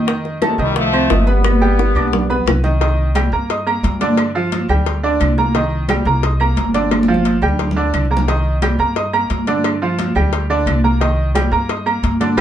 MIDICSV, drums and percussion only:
0, 0, Header, 1, 2, 480
1, 0, Start_track
1, 0, Key_signature, -3, "minor"
1, 0, Tempo, 341686
1, 103, Time_signature, 4, 2, 24, 8
1, 17431, End_track
2, 0, Start_track
2, 0, Title_t, "Drums"
2, 111, Note_on_c, 9, 60, 73
2, 112, Note_on_c, 9, 63, 38
2, 251, Note_off_c, 9, 60, 0
2, 253, Note_off_c, 9, 63, 0
2, 352, Note_on_c, 9, 60, 32
2, 355, Note_on_c, 9, 63, 34
2, 493, Note_off_c, 9, 60, 0
2, 495, Note_off_c, 9, 63, 0
2, 586, Note_on_c, 9, 75, 73
2, 587, Note_on_c, 9, 63, 99
2, 591, Note_on_c, 9, 60, 68
2, 726, Note_off_c, 9, 75, 0
2, 727, Note_off_c, 9, 63, 0
2, 732, Note_off_c, 9, 60, 0
2, 829, Note_on_c, 9, 63, 35
2, 834, Note_on_c, 9, 60, 31
2, 970, Note_off_c, 9, 63, 0
2, 974, Note_off_c, 9, 60, 0
2, 1068, Note_on_c, 9, 60, 67
2, 1069, Note_on_c, 9, 63, 37
2, 1209, Note_off_c, 9, 60, 0
2, 1209, Note_off_c, 9, 63, 0
2, 1310, Note_on_c, 9, 63, 37
2, 1310, Note_on_c, 9, 75, 73
2, 1450, Note_off_c, 9, 63, 0
2, 1450, Note_off_c, 9, 75, 0
2, 1548, Note_on_c, 9, 60, 69
2, 1548, Note_on_c, 9, 61, 85
2, 1551, Note_on_c, 9, 63, 85
2, 1688, Note_off_c, 9, 60, 0
2, 1688, Note_off_c, 9, 61, 0
2, 1691, Note_off_c, 9, 63, 0
2, 1784, Note_on_c, 9, 63, 85
2, 1791, Note_on_c, 9, 60, 33
2, 1925, Note_off_c, 9, 63, 0
2, 1931, Note_off_c, 9, 60, 0
2, 2027, Note_on_c, 9, 63, 94
2, 2030, Note_on_c, 9, 60, 74
2, 2031, Note_on_c, 9, 75, 67
2, 2168, Note_off_c, 9, 63, 0
2, 2170, Note_off_c, 9, 60, 0
2, 2172, Note_off_c, 9, 75, 0
2, 2275, Note_on_c, 9, 60, 30
2, 2416, Note_off_c, 9, 60, 0
2, 2519, Note_on_c, 9, 60, 64
2, 2659, Note_off_c, 9, 60, 0
2, 2749, Note_on_c, 9, 63, 74
2, 2753, Note_on_c, 9, 75, 67
2, 2759, Note_on_c, 9, 60, 33
2, 2890, Note_off_c, 9, 63, 0
2, 2894, Note_off_c, 9, 75, 0
2, 2900, Note_off_c, 9, 60, 0
2, 2988, Note_on_c, 9, 64, 101
2, 2997, Note_on_c, 9, 60, 65
2, 3128, Note_off_c, 9, 64, 0
2, 3137, Note_off_c, 9, 60, 0
2, 3228, Note_on_c, 9, 64, 81
2, 3242, Note_on_c, 9, 60, 36
2, 3369, Note_off_c, 9, 64, 0
2, 3382, Note_off_c, 9, 60, 0
2, 3468, Note_on_c, 9, 64, 95
2, 3474, Note_on_c, 9, 75, 69
2, 3478, Note_on_c, 9, 60, 70
2, 3478, Note_on_c, 9, 61, 88
2, 3608, Note_off_c, 9, 64, 0
2, 3615, Note_off_c, 9, 75, 0
2, 3618, Note_off_c, 9, 60, 0
2, 3618, Note_off_c, 9, 61, 0
2, 3706, Note_on_c, 9, 64, 81
2, 3846, Note_off_c, 9, 64, 0
2, 3951, Note_on_c, 9, 56, 116
2, 3956, Note_on_c, 9, 63, 40
2, 4091, Note_off_c, 9, 56, 0
2, 4097, Note_off_c, 9, 63, 0
2, 4189, Note_on_c, 9, 63, 36
2, 4330, Note_off_c, 9, 63, 0
2, 4428, Note_on_c, 9, 63, 105
2, 4432, Note_on_c, 9, 75, 74
2, 4435, Note_on_c, 9, 56, 78
2, 4569, Note_off_c, 9, 63, 0
2, 4573, Note_off_c, 9, 75, 0
2, 4575, Note_off_c, 9, 56, 0
2, 4666, Note_on_c, 9, 63, 34
2, 4807, Note_off_c, 9, 63, 0
2, 4910, Note_on_c, 9, 63, 39
2, 4917, Note_on_c, 9, 56, 106
2, 5050, Note_off_c, 9, 63, 0
2, 5057, Note_off_c, 9, 56, 0
2, 5151, Note_on_c, 9, 63, 35
2, 5157, Note_on_c, 9, 75, 69
2, 5292, Note_off_c, 9, 63, 0
2, 5298, Note_off_c, 9, 75, 0
2, 5392, Note_on_c, 9, 63, 88
2, 5398, Note_on_c, 9, 56, 71
2, 5532, Note_off_c, 9, 63, 0
2, 5538, Note_off_c, 9, 56, 0
2, 5630, Note_on_c, 9, 63, 86
2, 5634, Note_on_c, 9, 56, 72
2, 5770, Note_off_c, 9, 63, 0
2, 5774, Note_off_c, 9, 56, 0
2, 5865, Note_on_c, 9, 56, 114
2, 5867, Note_on_c, 9, 63, 40
2, 5874, Note_on_c, 9, 75, 69
2, 6005, Note_off_c, 9, 56, 0
2, 6007, Note_off_c, 9, 63, 0
2, 6014, Note_off_c, 9, 75, 0
2, 6112, Note_on_c, 9, 63, 36
2, 6252, Note_off_c, 9, 63, 0
2, 6352, Note_on_c, 9, 56, 74
2, 6356, Note_on_c, 9, 63, 94
2, 6493, Note_off_c, 9, 56, 0
2, 6497, Note_off_c, 9, 63, 0
2, 6593, Note_on_c, 9, 75, 73
2, 6595, Note_on_c, 9, 63, 34
2, 6595, Note_on_c, 9, 64, 86
2, 6734, Note_off_c, 9, 75, 0
2, 6735, Note_off_c, 9, 63, 0
2, 6735, Note_off_c, 9, 64, 0
2, 6833, Note_on_c, 9, 56, 102
2, 6839, Note_on_c, 9, 63, 40
2, 6973, Note_off_c, 9, 56, 0
2, 6979, Note_off_c, 9, 63, 0
2, 7079, Note_on_c, 9, 63, 33
2, 7220, Note_off_c, 9, 63, 0
2, 7313, Note_on_c, 9, 75, 68
2, 7315, Note_on_c, 9, 56, 72
2, 7319, Note_on_c, 9, 63, 90
2, 7454, Note_off_c, 9, 75, 0
2, 7456, Note_off_c, 9, 56, 0
2, 7460, Note_off_c, 9, 63, 0
2, 7557, Note_on_c, 9, 63, 85
2, 7697, Note_off_c, 9, 63, 0
2, 7793, Note_on_c, 9, 56, 117
2, 7798, Note_on_c, 9, 63, 37
2, 7933, Note_off_c, 9, 56, 0
2, 7938, Note_off_c, 9, 63, 0
2, 8038, Note_on_c, 9, 63, 37
2, 8178, Note_off_c, 9, 63, 0
2, 8269, Note_on_c, 9, 63, 101
2, 8271, Note_on_c, 9, 75, 76
2, 8272, Note_on_c, 9, 56, 76
2, 8410, Note_off_c, 9, 63, 0
2, 8412, Note_off_c, 9, 75, 0
2, 8413, Note_off_c, 9, 56, 0
2, 8512, Note_on_c, 9, 63, 36
2, 8652, Note_off_c, 9, 63, 0
2, 8752, Note_on_c, 9, 63, 39
2, 8755, Note_on_c, 9, 56, 112
2, 8893, Note_off_c, 9, 63, 0
2, 8895, Note_off_c, 9, 56, 0
2, 8989, Note_on_c, 9, 75, 68
2, 8994, Note_on_c, 9, 63, 36
2, 9130, Note_off_c, 9, 75, 0
2, 9134, Note_off_c, 9, 63, 0
2, 9231, Note_on_c, 9, 56, 73
2, 9235, Note_on_c, 9, 63, 95
2, 9372, Note_off_c, 9, 56, 0
2, 9376, Note_off_c, 9, 63, 0
2, 9475, Note_on_c, 9, 56, 69
2, 9475, Note_on_c, 9, 63, 78
2, 9615, Note_off_c, 9, 56, 0
2, 9616, Note_off_c, 9, 63, 0
2, 9711, Note_on_c, 9, 75, 68
2, 9713, Note_on_c, 9, 56, 118
2, 9715, Note_on_c, 9, 63, 116
2, 9851, Note_off_c, 9, 75, 0
2, 9854, Note_off_c, 9, 56, 0
2, 9855, Note_off_c, 9, 63, 0
2, 9875, Note_on_c, 9, 63, 95
2, 10015, Note_off_c, 9, 63, 0
2, 10033, Note_on_c, 9, 63, 99
2, 10173, Note_off_c, 9, 63, 0
2, 10189, Note_on_c, 9, 56, 72
2, 10329, Note_off_c, 9, 56, 0
2, 10428, Note_on_c, 9, 75, 70
2, 10512, Note_on_c, 9, 64, 92
2, 10569, Note_off_c, 9, 75, 0
2, 10653, Note_off_c, 9, 64, 0
2, 10666, Note_on_c, 9, 56, 101
2, 10673, Note_on_c, 9, 64, 87
2, 10807, Note_off_c, 9, 56, 0
2, 10813, Note_off_c, 9, 64, 0
2, 10833, Note_on_c, 9, 64, 97
2, 10974, Note_off_c, 9, 64, 0
2, 11148, Note_on_c, 9, 64, 95
2, 11151, Note_on_c, 9, 56, 73
2, 11153, Note_on_c, 9, 75, 70
2, 11288, Note_off_c, 9, 64, 0
2, 11291, Note_off_c, 9, 56, 0
2, 11294, Note_off_c, 9, 75, 0
2, 11311, Note_on_c, 9, 64, 67
2, 11451, Note_off_c, 9, 64, 0
2, 11473, Note_on_c, 9, 64, 108
2, 11613, Note_off_c, 9, 64, 0
2, 11634, Note_on_c, 9, 63, 38
2, 11637, Note_on_c, 9, 56, 114
2, 11774, Note_off_c, 9, 63, 0
2, 11777, Note_off_c, 9, 56, 0
2, 11874, Note_on_c, 9, 63, 34
2, 12015, Note_off_c, 9, 63, 0
2, 12111, Note_on_c, 9, 63, 102
2, 12111, Note_on_c, 9, 75, 76
2, 12114, Note_on_c, 9, 56, 78
2, 12251, Note_off_c, 9, 63, 0
2, 12252, Note_off_c, 9, 75, 0
2, 12254, Note_off_c, 9, 56, 0
2, 12351, Note_on_c, 9, 63, 34
2, 12492, Note_off_c, 9, 63, 0
2, 12588, Note_on_c, 9, 63, 38
2, 12590, Note_on_c, 9, 56, 109
2, 12728, Note_off_c, 9, 63, 0
2, 12730, Note_off_c, 9, 56, 0
2, 12831, Note_on_c, 9, 63, 35
2, 12833, Note_on_c, 9, 75, 72
2, 12972, Note_off_c, 9, 63, 0
2, 12973, Note_off_c, 9, 75, 0
2, 13065, Note_on_c, 9, 56, 69
2, 13074, Note_on_c, 9, 63, 88
2, 13205, Note_off_c, 9, 56, 0
2, 13214, Note_off_c, 9, 63, 0
2, 13308, Note_on_c, 9, 56, 68
2, 13309, Note_on_c, 9, 63, 85
2, 13449, Note_off_c, 9, 56, 0
2, 13450, Note_off_c, 9, 63, 0
2, 13547, Note_on_c, 9, 56, 116
2, 13553, Note_on_c, 9, 63, 37
2, 13553, Note_on_c, 9, 75, 67
2, 13688, Note_off_c, 9, 56, 0
2, 13693, Note_off_c, 9, 63, 0
2, 13693, Note_off_c, 9, 75, 0
2, 13792, Note_on_c, 9, 63, 35
2, 13933, Note_off_c, 9, 63, 0
2, 14028, Note_on_c, 9, 56, 72
2, 14039, Note_on_c, 9, 63, 100
2, 14169, Note_off_c, 9, 56, 0
2, 14179, Note_off_c, 9, 63, 0
2, 14269, Note_on_c, 9, 75, 73
2, 14276, Note_on_c, 9, 63, 34
2, 14276, Note_on_c, 9, 64, 81
2, 14409, Note_off_c, 9, 75, 0
2, 14416, Note_off_c, 9, 63, 0
2, 14416, Note_off_c, 9, 64, 0
2, 14507, Note_on_c, 9, 56, 107
2, 14513, Note_on_c, 9, 63, 39
2, 14648, Note_off_c, 9, 56, 0
2, 14654, Note_off_c, 9, 63, 0
2, 14760, Note_on_c, 9, 63, 36
2, 14901, Note_off_c, 9, 63, 0
2, 14989, Note_on_c, 9, 75, 65
2, 14990, Note_on_c, 9, 56, 73
2, 14997, Note_on_c, 9, 63, 93
2, 15130, Note_off_c, 9, 75, 0
2, 15131, Note_off_c, 9, 56, 0
2, 15138, Note_off_c, 9, 63, 0
2, 15240, Note_on_c, 9, 63, 84
2, 15381, Note_off_c, 9, 63, 0
2, 15472, Note_on_c, 9, 56, 120
2, 15483, Note_on_c, 9, 63, 37
2, 15612, Note_off_c, 9, 56, 0
2, 15624, Note_off_c, 9, 63, 0
2, 15723, Note_on_c, 9, 63, 36
2, 15864, Note_off_c, 9, 63, 0
2, 15949, Note_on_c, 9, 75, 71
2, 15950, Note_on_c, 9, 56, 75
2, 15954, Note_on_c, 9, 63, 103
2, 16089, Note_off_c, 9, 75, 0
2, 16091, Note_off_c, 9, 56, 0
2, 16095, Note_off_c, 9, 63, 0
2, 16189, Note_on_c, 9, 63, 34
2, 16329, Note_off_c, 9, 63, 0
2, 16427, Note_on_c, 9, 56, 105
2, 16432, Note_on_c, 9, 63, 38
2, 16568, Note_off_c, 9, 56, 0
2, 16573, Note_off_c, 9, 63, 0
2, 16668, Note_on_c, 9, 75, 71
2, 16675, Note_on_c, 9, 63, 37
2, 16808, Note_off_c, 9, 75, 0
2, 16815, Note_off_c, 9, 63, 0
2, 16909, Note_on_c, 9, 56, 74
2, 16909, Note_on_c, 9, 63, 88
2, 17049, Note_off_c, 9, 56, 0
2, 17050, Note_off_c, 9, 63, 0
2, 17151, Note_on_c, 9, 56, 66
2, 17154, Note_on_c, 9, 63, 88
2, 17292, Note_off_c, 9, 56, 0
2, 17295, Note_off_c, 9, 63, 0
2, 17388, Note_on_c, 9, 75, 107
2, 17431, Note_off_c, 9, 75, 0
2, 17431, End_track
0, 0, End_of_file